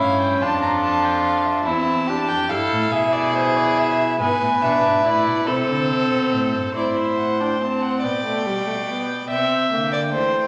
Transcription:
0.00 0.41 G2 medium
0.00 0.43 C#4 medium
0.00 0.39 E4 medium
0.00 0.20 F5 medium
0.21 0.43 G5 medium
0.41 1.64 F2 loud
0.41 1.68 D4 medium
0.41 1.64 F4 medium
0.41 0.61 A5 medium
0.62 0.70 A#5 medium
0.82 1.05 A5 medium
1.04 1.24 G5 medium
1.24 1.47 F5 medium
1.45 1.66 E5 medium
1.65 2.31 E2 medium
1.65 2.10 C4 medium
1.65 2.09 E4 medium
1.65 2.30 A5 medium
2.08 2.50 D4 medium
2.08 2.51 G4 medium
2.28 2.50 F2 medium
2.28 2.51 G5 loud
2.49 2.58 G2 medium
2.49 4.16 E4 medium
2.49 2.93 A4 medium
2.49 2.93 F5 medium
2.71 2.91 A2 medium
2.91 4.17 B2 medium
2.91 4.19 G#4 medium
2.91 3.14 E5 loud
3.13 3.36 D5 loud
3.35 3.58 C5 medium
3.56 3.80 D5 medium
3.78 4.19 E5 medium
4.20 4.28 G#2 medium
4.20 4.61 B3 medium
4.20 5.49 B4 medium
4.20 4.63 G#5 loud
4.41 4.49 A2 medium
4.62 4.83 B2 medium
4.62 5.04 D4 medium
4.62 5.06 E5 medium
4.83 5.04 G#2 medium
5.04 5.28 A2 medium
5.04 5.49 E4 medium
5.04 5.46 D5 loud
5.26 5.49 B2 medium
5.47 5.70 C3 medium
5.47 6.75 C4 medium
5.47 6.75 A4 medium
5.47 6.73 C5 medium
5.69 5.92 D3 medium
5.90 6.11 C3 medium
6.12 6.34 B2 medium
6.33 6.56 A2 medium
6.54 6.75 G2 medium
6.75 8.04 A2 medium
6.75 7.42 E4 medium
6.75 8.00 C5 medium
6.75 6.98 D5 medium
6.97 7.18 E5 medium
7.18 7.42 F#5 medium
7.40 7.61 D4 medium
7.40 7.63 G5 medium
7.61 8.05 C4 medium
7.61 7.84 A5 medium
7.82 8.05 F#5 medium
8.03 9.29 B2 medium
8.03 8.24 B3 medium
8.03 9.27 D5 medium
8.03 9.29 G5 medium
8.25 8.48 A3 medium
8.46 8.66 G3 medium
8.66 8.74 A3 medium
8.88 9.29 B3 medium
9.30 9.71 C3 medium
9.30 9.71 C4 medium
9.30 9.92 E5 medium
9.30 10.47 G5 medium
9.72 10.16 D3 medium
9.72 10.13 A#3 medium
9.93 10.01 D5 medium
10.13 10.47 E3 medium
10.13 10.47 A3 medium
10.13 10.47 C5 medium

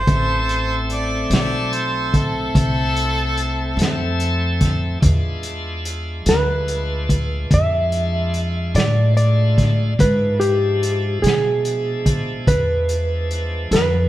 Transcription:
0.00 0.87 A4 medium
0.00 0.87 C5 medium
0.07 1.27 A1 medium
0.07 4.99 A3 medium
0.07 4.99 C4 medium
0.07 4.99 E4 medium
0.07 4.99 A4 medium
0.07 kick medium
0.07 closed hi-hat medium
0.49 closed hi-hat soft
0.90 1.31 D5 medium
0.90 closed hi-hat soft
1.30 2.50 B1 medium
1.30 snare medium
1.30 closed hi-hat medium
1.34 1.75 D5 medium
1.73 2.18 C5 medium
1.73 closed hi-hat soft
2.14 2.55 A4 medium
2.14 kick medium
2.14 closed hi-hat soft
2.55 3.75 C2 medium
2.55 4.17 A4 medium
2.55 kick medium
2.55 closed hi-hat medium
2.97 closed hi-hat soft
3.37 closed hi-hat soft
3.77 4.98 F2 medium
3.77 closed hi-hat medium
3.82 snare medium
4.20 closed hi-hat medium
4.61 kick medium
4.61 snare soft
4.61 closed hi-hat medium
5.00 6.23 E2 medium
5.00 9.94 G#3 medium
5.00 9.93 D4 medium
5.00 9.94 E4 medium
5.00 9.94 F4 medium
5.00 kick medium
5.00 closed hi-hat medium
5.43 closed hi-hat soft
5.85 closed hi-hat medium
6.26 7.47 D2 medium
6.26 7.55 B4 medium
6.26 snare medium
6.26 closed hi-hat medium
6.68 closed hi-hat soft
7.09 kick medium
7.09 closed hi-hat medium
7.51 8.71 F2 medium
7.51 8.75 E5 medium
7.51 kick medium
7.51 closed hi-hat medium
7.92 closed hi-hat soft
8.34 closed hi-hat soft
8.75 9.95 A2 medium
8.75 9.14 D5 medium
8.75 snare medium
8.75 closed hi-hat medium
9.17 10.02 D5 medium
9.17 closed hi-hat soft
9.58 kick medium
9.58 snare soft
9.58 closed hi-hat soft
9.98 11.20 G#2 medium
9.98 14.09 F3 medium
9.98 14.09 G#3 medium
9.98 14.09 D4 medium
9.98 14.09 E4 medium
9.98 10.42 B4 medium
9.98 kick medium
9.98 closed hi-hat medium
10.40 11.22 G4 medium
10.40 closed hi-hat medium
10.83 closed hi-hat medium
11.22 12.44 B2 medium
11.22 12.51 G#4 medium
11.22 closed hi-hat medium
11.27 snare medium
11.65 closed hi-hat medium
12.06 kick medium
12.06 closed hi-hat medium
12.47 13.68 E2 medium
12.47 13.68 B4 medium
12.47 kick medium
12.47 closed hi-hat medium
12.89 closed hi-hat medium
13.31 closed hi-hat soft
13.71 14.09 F2 medium
13.71 14.09 B4 medium
13.71 snare medium
13.71 closed hi-hat medium

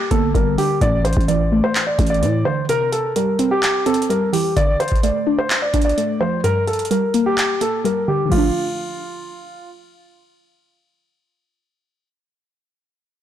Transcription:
0.00 0.11 G2 loud
0.00 0.33 G3 medium
0.11 0.34 G1 loud
0.11 0.81 A#3 medium
0.11 0.30 A4 medium
0.11 kick loud
0.11 closed hi-hat medium
0.34 0.57 G1 loud
0.34 0.81 G3 medium
0.34 0.54 A#4 medium
0.34 kick medium
0.34 closed hi-hat medium
0.58 0.81 D3 medium
0.58 0.77 G4 medium
0.58 open hi-hat medium
0.81 1.15 A1 loud
0.81 1.99 A2 medium
0.81 1.01 D5 loud
0.81 kick loud
0.81 closed hi-hat medium
1.05 1.24 C5 medium
1.05 closed hi-hat medium
1.13 closed hi-hat medium
1.17 1.62 A1 loud
1.17 kick medium
1.17 closed hi-hat soft
1.28 2.21 E3 medium
1.28 1.61 D5 medium
1.28 closed hi-hat medium
1.52 1.98 A3 medium
1.64 1.83 C5 medium
1.75 clap loud
1.75 closed hi-hat medium
1.87 2.06 D5 medium
1.99 2.24 A1 loud
1.99 2.69 A3 medium
1.99 kick loud
1.99 closed hi-hat medium
2.06 2.43 D5 medium
2.06 closed hi-hat medium
2.14 closed hi-hat soft
2.22 2.44 A2 loud
2.22 2.69 E3 medium
2.22 closed hi-hat medium
2.45 2.69 D3 medium
2.45 2.64 C5 medium
2.69 3.86 C3 medium
2.69 2.88 A#4 loud
2.69 closed hi-hat medium
2.92 3.11 A4 medium
2.92 closed hi-hat medium
3.16 4.08 G3 medium
3.16 3.49 A#4 medium
3.16 closed hi-hat medium
3.39 3.85 C4 medium
3.39 closed hi-hat medium
3.51 3.84 G4 medium
3.63 clap loud
3.63 closed hi-hat medium
3.86 4.56 C4 medium
3.86 4.05 A4 medium
3.86 closed hi-hat medium
3.94 closed hi-hat medium
4.02 closed hi-hat medium
4.10 4.56 G3 medium
4.10 4.29 A#4 medium
4.10 closed hi-hat medium
4.33 4.56 E3 medium
4.33 4.52 G4 medium
4.33 open hi-hat medium
4.57 5.74 D3 medium
4.57 4.76 D5 loud
4.57 kick loud
4.57 closed hi-hat medium
4.80 4.99 C5 medium
4.80 closed hi-hat medium
4.88 kick medium
4.88 closed hi-hat medium
4.96 closed hi-hat soft
5.03 5.96 A3 medium
5.03 5.36 D5 medium
5.03 closed hi-hat medium
5.27 5.73 D4 medium
5.38 5.57 C5 medium
5.50 clap loud
5.50 closed hi-hat medium
5.62 5.81 D5 medium
5.74 6.44 D4 medium
5.74 kick loud
5.74 closed hi-hat medium
5.82 6.18 D5 medium
5.82 closed hi-hat medium
5.89 closed hi-hat soft
5.97 6.44 A3 medium
5.97 closed hi-hat medium
6.20 6.44 F3 medium
6.20 6.40 C5 medium
6.44 7.61 G2 loud
6.44 6.63 A#4 loud
6.44 closed hi-hat medium
6.67 6.86 A4 medium
6.67 closed hi-hat soft
6.73 closed hi-hat soft
6.79 closed hi-hat medium
6.85 closed hi-hat medium
6.91 7.83 G3 medium
6.91 7.24 A#4 medium
6.91 closed hi-hat medium
7.14 7.60 A#3 medium
7.14 closed hi-hat medium
7.26 7.59 G4 medium
7.38 clap loud
7.38 closed hi-hat medium
7.61 8.31 A#3 medium
7.61 7.80 A4 medium
7.61 closed hi-hat medium
7.84 8.31 G3 medium
7.84 8.04 A#4 medium
7.84 closed hi-hat medium
8.08 8.24 D3 medium
8.08 8.27 G4 medium
8.25 12.01 D3 medium
8.25 12.05 F3 medium
8.32 12.09 A3 medium
8.32 9.68 F4 medium
8.32 kick loud
8.32 crash medium
8.37 12.13 D4 loud

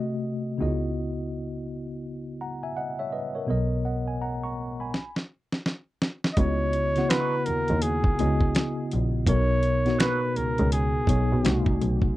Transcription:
0.00 0.59 C3 medium
0.00 0.59 A3 medium
0.00 0.60 F#4 medium
0.00 0.60 D#5 medium
0.58 3.45 C#2 medium
0.58 3.08 C#3 medium
0.58 3.08 B3 medium
0.58 0.68 D#4 soft
0.58 3.09 F#4 medium
0.62 2.38 D#5 medium
0.66 3.12 E4 medium
2.41 2.62 F#5 soft
2.41 2.62 A#5 soft
2.63 2.76 E5 soft
2.63 2.76 G#5 medium
2.77 2.98 D#5 soft
2.77 2.98 F#5 medium
2.99 3.12 C#5 soft
2.99 3.12 E5 medium
3.12 3.34 B4 soft
3.12 3.34 D#5 medium
3.35 3.48 A#4 soft
3.35 3.69 C#5 soft
3.46 4.90 B1 medium
3.46 4.89 B2 medium
3.46 4.90 B3 medium
3.46 4.90 A#4 medium
3.46 3.85 D#5 medium
3.85 4.07 D#5 soft
3.85 4.06 F#5 soft
4.08 4.20 G#5 medium
4.22 4.43 F#5 soft
4.22 4.43 A#5 medium
4.43 4.78 A#5 soft
4.43 4.78 C#6 medium
4.80 5.14 G#5 soft
4.80 5.14 B5 medium
4.94 snare soft
5.16 snare soft
5.52 snare medium
5.66 snare medium
6.02 snare medium
6.24 snare medium
6.33 6.40 D#5 medium
6.33 kick loud
6.33 closed hi-hat medium
6.37 6.94 C#2 loud
6.37 6.84 C#3 medium
6.37 6.85 B3 medium
6.37 6.85 E4 medium
6.37 6.85 F#4 medium
6.37 7.11 C#5 loud
6.37 6.85 D#5 medium
6.73 closed hi-hat medium
6.96 8.00 C#3 medium
6.96 8.00 B3 medium
6.96 8.00 E4 medium
6.96 8.00 F#4 medium
6.96 8.01 F#5 medium
6.96 snare soft
6.96 closed hi-hat soft
7.10 7.34 E3 medium
7.10 7.34 B3 medium
7.10 7.34 D#4 medium
7.10 7.34 F#4 medium
7.10 7.47 B4 loud
7.10 finger snap medium
7.10 snare loud
7.10 closed hi-hat medium
7.46 7.64 D#2 soft
7.46 7.84 A#4 medium
7.46 closed hi-hat medium
7.68 7.80 D#2 medium
7.68 closed hi-hat soft
7.82 8.91 G#4 medium
7.82 closed hi-hat medium
8.04 8.15 C#2 soft
8.04 kick loud
8.18 8.48 C#2 medium
8.18 9.12 C#3 medium
8.18 9.12 B3 medium
8.18 9.12 E4 medium
8.18 9.13 F#4 medium
8.18 9.13 D#5 medium
8.18 closed hi-hat medium
8.41 kick medium
8.55 finger snap medium
8.55 snare loud
8.55 closed hi-hat medium
8.91 9.21 A#1 medium
8.91 closed hi-hat medium
9.26 9.84 B1 medium
9.26 9.73 B2 medium
9.26 9.74 B3 medium
9.26 9.74 D#4 medium
9.26 9.74 A#4 medium
9.26 9.96 C#5 loud
9.26 kick loud
9.26 closed hi-hat medium
9.63 closed hi-hat medium
9.85 10.88 B2 medium
9.85 10.89 B3 medium
9.85 10.89 D#4 medium
9.85 10.89 F#4 medium
9.85 snare soft
9.85 closed hi-hat soft
9.99 10.19 F#3 medium
9.99 10.20 A#3 medium
9.99 10.20 D#4 medium
9.99 10.20 F#4 medium
9.99 10.38 B4 loud
9.99 finger snap medium
9.99 snare loud
9.99 closed hi-hat medium
10.36 10.53 C#2 soft
10.36 10.72 A#4 medium
10.36 closed hi-hat medium
10.58 10.87 C#2 loud
10.58 closed hi-hat soft
10.72 11.76 G#4 medium
10.72 closed hi-hat medium
11.07 11.25 B1 medium
11.07 11.43 B2 medium
11.07 11.44 B3 medium
11.07 11.43 D#4 medium
11.07 11.44 C#5 medium
11.07 kick medium
11.07 closed hi-hat medium
11.33 11.42 B2 loud
11.43 11.73 C2 medium
11.43 12.06 C3 medium
11.43 12.06 A3 medium
11.43 12.07 D#4 medium
11.43 12.07 F#4 medium
11.43 finger snap medium
11.43 snare loud
11.43 closed hi-hat medium
11.66 kick medium
11.82 12.16 B1 medium
11.82 closed hi-hat medium
12.02 kick medium

